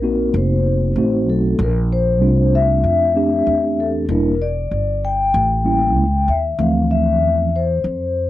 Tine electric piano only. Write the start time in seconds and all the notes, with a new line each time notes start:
0.02 A#3 C4 D#4 F#4
0.97 A3 C4 D#4 F#4
2.21 A3 C4 D4 F4
3.15 A3 C4 D4 G4
4.09 G3 A#3 D4 E4
5.64 G3 A#3 C#4 E4
6.59 E3 F3 A3 C4